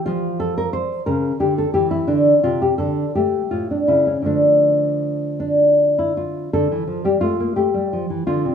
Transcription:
\new Staff \with { instrumentName = "Nylon-string guitar" } { \time 6/8 \key d \minor \tempo 4. = 57 << { f'8 a'16 bes'16 c''8 ais'8 g'16 a'16 g'16 e'16 | d'8 f'16 g'16 a'8 g'8 f'16 d'16 e'16 cis'16 | d'4. d'8. e'16 f'8 | a'8. g'16 f'8 g'4 f'8 | } \\ { f4. cis8 d8 e8 | d8 c8 d8 a8 a,8 cis8 | <d f a>2. | d16 e16 f16 g16 a16 bes16 a16 g16 f16 e16 d16 c16 | } >> }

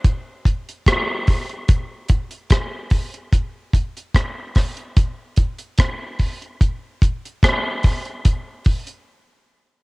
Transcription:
\new DrumStaff \with { instrumentName = "Drums" } \drummode { \time 4/4 \tempo 4 = 73 <hh bd>8 <hh bd>16 hh16 <hh bd ss>8 <hho bd>16 hh16 <hh bd>8 <hh bd>16 hh16 <hh bd ss>8 <hho bd>16 hh16 | <hh bd>8 <hh bd>16 hh16 <hh bd ss>8 <hho bd ss>16 hh16 <hh bd>8 <hh bd>16 hh16 <hh bd ss>8 <hho bd>16 hh16 | <hh bd>8 <hh bd>16 hh16 <hh bd ss>8 <hho bd>16 hh16 <hh bd>8 <hho bd>16 hh16 r4 | }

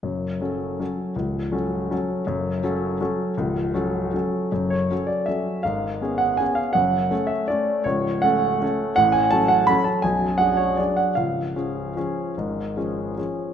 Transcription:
\new Staff \with { instrumentName = "Grand piano" } { \time 3/4 \key fis \minor \tempo 4 = 160 << { r2. | r2. | r2. | r2. |
r8 cis''4 d''8 e''4 | eis''4. fis''8 gis''8 eis''8 | fis''4. e''8 d''4 | cis''4 fis''2 |
fis''8 gis''8 a''8 fis''8 b''8 a''8 | gis''4 fis''8 cis''8 d''8 fis''8 | eis''2.~ | eis''2 r4 | } \\ { <fis,, fis,>4 <fis cis' a'>4 <fis cis' a'>4 | <cis,, cis,>4 <fis cis' a'>4 <fis cis' a'>4 | <fis,, fis,>4 <fis cis' a'>4 <fis cis' a'>4 | <cis,, cis,>4 <fis cis' a'>4 <fis cis' a'>4 |
<fis,, fis,>4 <fis cis' a'>4 <fis cis' a'>4 | <gis,, gis,>4 <b cis' gis'>4 <b cis' gis'>4 | <fis,, fis,>4 <a cis' a'>4 <a cis' a'>4 | <cis,, cis,>4 <a cis' a'>4 <a cis' a'>4 |
<a,, a,>4 <fis cis' a'>4 <fis cis' a'>4 | <b,,, b,,>4 <fis d' gis'>4 <fis d' gis'>4 | <cis,, cis,>4 <eis cis' gis'>4 <eis cis' gis'>4 | <gis,, gis,>4 <eis cis' gis'>4 <eis cis' gis'>4 | } >> }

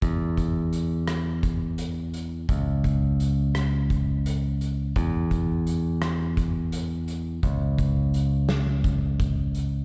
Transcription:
<<
  \new Staff \with { instrumentName = "Picked electric bass" } { \clef bass \time 7/8 \key cis \minor \tempo 4 = 85 e,2.~ e,8 | cis,2.~ cis,8 | e,2.~ e,8 | cis,2.~ cis,8 | }
  \new DrumStaff \with { instrumentName = "Drums" } \drummode { \time 7/8 <hh bd>8 <hh bd>8 hh8 <hh ss>8 <hh bd>8 hh8 hh8 | <hh bd>8 <hh bd>8 hh8 <hh ss>8 <hh bd>8 hh8 hh8 | <hh bd>8 <hh bd>8 hh8 <hh ss>8 <hh bd>8 hh8 hh8 | <hh bd>8 <hh bd>8 hh8 <hh sn>8 <hh bd>8 <hh bd>8 hh8 | }
>>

